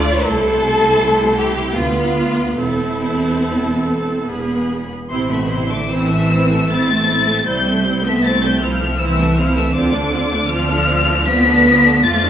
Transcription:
Already playing: D2 D3 A3 F4 D5 B5
0.25 C2 C3 A3 E4 A4 C6
1.39 G4
1.76 D2 B3 F4 B5
2.58 E1 E2 C4 E4 A4 A5
4.28 E1 E2 B3 G#4 B5
5.10 A1 C3 C4 E4 C5 C6
5.30 B2 A3 C4 A4 E5 B5
5.49 C3 C4 E4 C5 C6
5.67 D3 A3 C4 A4 E5
5.71 D6
5.88 E3 C4 E4 C5 E6
6.09 A3 C4 A4 E5
6.30 C4 E4 C5
6.49 A3 C4 A4 E5
6.70 A3 C4 E4 C5 A6
6.91 A3 C4 A4 E5
7.09 C4 E4 C5
7.27 A3 C4 A4 E5
7.47 C2 G3 C4 E4 C5 G6
7.66 A3 C4 A4 E5
7.86 C4 E4 C5
8.05 A3 B3 C4 A4 E5 B6
8.24 A3 C4 E4 C5 A6
8.43 G3 A3 C4 A4 E5 G6
8.61 F3 C4 E4 C5 F6
8.80 A3 C4 A4 E5
8.98 E3 C4 E4 C5 E6
9.19 A3 C4 A4 E5
9.37 F3 C4 E4 C5 F6
9.55 E3 A3 C4 A4 E5 E6
9.74 D2 D3 C4 F4 C5 D5 D6
9.93 A3 D4 A4 D5
10.11 C4 F4 C5 D5
10.31 A3 D4 A4 D5
10.48 F3 C4 F4 C5 D5 F6
10.69 A3 D4 A4 D5
10.88 C4 F4 C5 D5
11.07 A3 D4 A4 D5
11.27 B3 C4 F4 C5 D5 B6
11.46 A3 D4 A4 D5
11.66 C4 F4 C5 D5
11.86 A3 D4 A4 D5
12.04 F2 F3 A3 F4 D5 A6
12.24 A3 D4 A4 F5

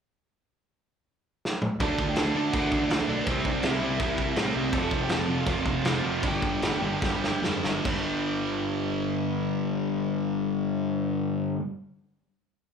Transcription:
1.45 snare
1.62 mid tom
1.80 D2 D3 A3 D4 A4 A5, kick, crash
1.98 D2, kick
2.09 G4 G5
2.16 D2 D3 A3 D4 A4 A5, snare, crash
2.35 D2 D3 A3 D4
2.46 F#4 F#5
2.53 D2 D3 A3 D4 F#4 F#5, kick, crash
2.72 D2, kick
2.82 D4 D5
2.89 D2 D3 A3 D4 D5, snare, crash
3.08 B1 D3 A3 D4
3.19 B3 B4
3.26 C2 C3 G3 C4, kick, crash
3.30 C5
3.45 C2 D4 D5, kick
3.63 C2 C3 G3 C4 E4, snare, crash
3.67 E5
3.81 C2 C3 G3 C4
4.00 C2 C3 G3 C4, kick, crash
4.18 kick
4.36 A2 C3 G3 C4, snare, crash
4.54 C2 C3 G3 C4
4.72 F1 F2 C3 F3 A4 A5, kick, crash
4.91 F1, kick
5.02 G4 G5
5.09 F1 F2 C3 F3 A4 A5, snare, crash
5.27 F1 F2 C3 F3
5.40 F4 F5
5.46 F1 F2 C3 F3 F4 F5, kick, crash
5.66 F1, kick
5.85 F1 F2 C3 F3, snare, crash
6.03 F1 F2 C3 F3
6.23 G1 G2 D3 G3 G4, kick, crash
6.27 G5
6.42 G1, kick
6.62 G1 G2 D3 G3, snare, crash
6.82 G1 G2 D3 G3
7.02 G1 G2 D3 G3, kick, snare
7.24 snare
7.43 F2 G2 D3 G3, snare
7.64 G1 G2 D3 G3, snare
7.85 G1 G2 D3, kick, crash
7.89 G3

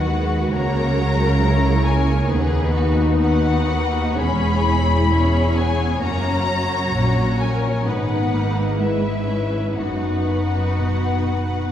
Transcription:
Already playing: D#2 D#3 F#4 B4 F#5
0.08 G#3
0.52 C#2 C#3 A#3 A#4 C#5 A#5
0.97 F#3
1.40 G#3 E4 C#5
1.85 A#3 G#5
2.29 D#2 B3 D#4 G#4 B4
2.74 F#4
3.20 B3 F#4 B4 F#5
3.68 A#3
4.17 E1 E2 G#3 C#4 G#4 C#5 B5
4.64 E4
5.10 C#4 G#4 C#5
5.56 B3 G#5
6.01 F#1 F#2 A#3 C#4 F#4 C#5 A#5
6.48 F#3
6.94 A#1 A#2 C#4 F#4
7.40 A#4 G#5
7.86 G#1 G#2 B3 D#4 B4 F#5
8.33 A#3
8.79 G#3 E4 B4 E5
9.27 C#4
9.75 F#1 F#2 B3 D#4 F#4 B4 F#5
10.75 B2

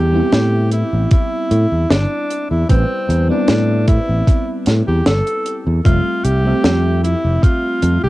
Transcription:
Already playing: E2 G3 B3 C4 E4 G4
0.12 G3 B3 C4 E4
0.32 A2, snare, closed hi-hat
0.72 E4, closed hi-hat
0.93 A1
1.11 E4, kick, closed hi-hat
1.51 A2, closed hi-hat
1.72 E2
1.90 G1 D4, snare, closed hi-hat
2.30 closed hi-hat
2.50 E2 E4
2.69 A1 G3 C4 E4 B4, kick, closed hi-hat
3.09 E2, closed hi-hat
3.28 G3 B3 C4 D4 E4, muted fingered electric bass stroke
3.48 A2, snare, closed hi-hat
3.88 E4, kick, closed hi-hat
4.09 A1
4.27 kick, closed hi-hat
4.66 A2, snare, closed hi-hat
4.87 E2 G4
5.06 G1 A4, snare, closed hi-hat
5.27 closed hi-hat
5.46 closed hi-hat
5.67 E2
5.84 F1 G3 A3 C4 F4 E5, kick, closed hi-hat
6.24 C2 G4, closed hi-hat
6.44 G3 A3 C4 E5
6.64 F2, snare, closed hi-hat
7.03 E4, closed hi-hat
7.24 F1
7.43 F4, kick, closed hi-hat
7.82 F2, closed hi-hat
8.04 C2 G4

